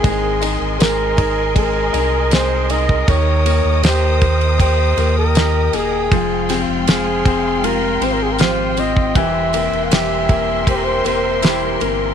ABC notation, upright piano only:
X:1
M:4/4
L:1/8
Q:1/4=79
K:Fm
V:1 name="Upright piano"
A, E A, E A, E A, E | E, B, G B, g B, E B, | F, C F C F C F C | =E, B, G B, G B, =E B, |]